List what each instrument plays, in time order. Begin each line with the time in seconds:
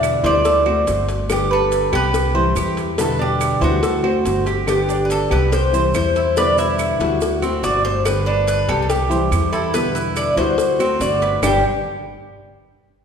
Already playing: upright bass E2, nylon-string guitar B2 D3 G3 B3 E4, cuban tres D4 E5
0.03 cowbell, claves, maracas
0.23 upright bass D2, nylon-string guitar D3 G3 B3 E4, cuban tres C5 D5, cowbell, maracas
0.45 cuban tres A4, muted nylon-string guitar stroke, cowbell, maracas
0.66 nylon-string guitar A3 C4 F#4, cuban tres C5, claves
0.87 upright bass G1, nylon-string guitar D3 A3 C4 F#4, cowbell, maracas
1.08 cowbell, maracas
1.29 nylon-string guitar D3 G3 B3 G4, cuban tres G4, cowbell, claves, maracas
1.51 cuban tres A4 B4
1.72 cowbell, maracas
1.92 upright bass C2, nylon-string guitar G3 B3 G4, cuban tres G4 B4, cowbell, claves, maracas
2.13 muted nylon-string guitar stroke, cowbell, maracas
2.35 nylon-string guitar E3 G3 C4 E4, cuban tres C5
2.56 upright bass E2, nylon-string guitar E3 G3 C4 E4, cuban tres G4, cowbell, claves, maracas
2.77 cowbell, maracas
2.98 nylon-string guitar B2 D3 G3 B3 E4, cuban tres B3 A4, cowbell, maracas
3.19 cuban tres D4 G4
3.41 cowbell, claves, maracas
3.61 upright bass D2, nylon-string guitar D3 G3 B3 E4, cuban tres F#4 C5, cowbell, maracas
3.82 cuban tres A4, muted nylon-string guitar stroke, cowbell, maracas
4.03 nylon-string guitar A3 C4 F#4, cuban tres C5, claves
4.25 upright bass G1, nylon-string guitar D3 A3 C4 F#4, cowbell, maracas
4.46 cuban tres G4, cowbell, maracas
4.66 nylon-string guitar D3 G3 B3 G4, cuban tres G4, cowbell, claves, maracas
4.89 cuban tres D4, maracas
5.05 cuban tres B4
5.10 cuban tres A4, cowbell, maracas
5.30 upright bass C2, nylon-string guitar G3 B3 G4, cuban tres G4 B4, cowbell, claves, maracas
5.52 cuban tres C5, muted nylon-string guitar stroke, cowbell, maracas
5.73 nylon-string guitar E3 G3 C4 E4, cuban tres C5, maracas
5.94 upright bass E2, nylon-string guitar E3 G3 C4 E4, cuban tres C5, cowbell, claves, maracas
6.16 cuban tres E4, cowbell, maracas
6.37 nylon-string guitar B2 D3 G3 B3 E4, cuban tres B3 D5, cowbell, maracas
6.58 cuban tres E4 E5, maracas
6.79 cowbell, claves, maracas
7.00 upright bass D2, nylon-string guitar D3 G3 B3 E4, cuban tres F#4, cowbell, maracas
7.21 muted nylon-string guitar stroke, cowbell, maracas
7.42 nylon-string guitar A3 C4 F#4, cuban tres C4, claves, maracas
7.63 upright bass G1, nylon-string guitar D3 A3 C4 F#4, cuban tres F#4 D5, cowbell, maracas
7.85 cuban tres C5, cowbell, maracas
8.05 nylon-string guitar D3 G3 B3 G4, cuban tres B4, cowbell, claves, maracas
8.26 cuban tres D4 B4
8.48 cuban tres B4, cowbell, maracas
8.68 upright bass C2, nylon-string guitar G3 B3 G4, cuban tres G4 A4, cowbell, claves, maracas
8.82 cuban tres A4
8.89 cuban tres G4, muted nylon-string guitar stroke, cowbell, maracas
9.10 nylon-string guitar E3 G3 C4 E4, cuban tres C5, maracas
9.31 upright bass E2, nylon-string guitar E3 G3 C4 E4, cowbell, claves, maracas
9.53 cuban tres E4 A4, cowbell, maracas
9.74 nylon-string guitar B2 D3 G3 B3 E4, cuban tres B3 B4, cowbell, maracas
9.95 cuban tres E4 B4, maracas
10.16 cuban tres D5, cowbell, claves, maracas
10.37 upright bass D2, nylon-string guitar D3 G3 B3 E4, cuban tres F#4 C5, cowbell, maracas
10.58 muted nylon-string guitar stroke, cowbell, maracas
10.79 nylon-string guitar A3 C4 F#4, cuban tres C4, claves, maracas
11.00 upright bass G1, nylon-string guitar D3 A3 C4 F#4, cuban tres F#4 D5, cowbell, maracas
11.22 cuban tres B3, cowbell, maracas
11.42 upright bass G1, nylon-string guitar G2 A2 D3 G3 B3 G4, cuban tres G3 D4 G4 G5, low bongo, claves, maracas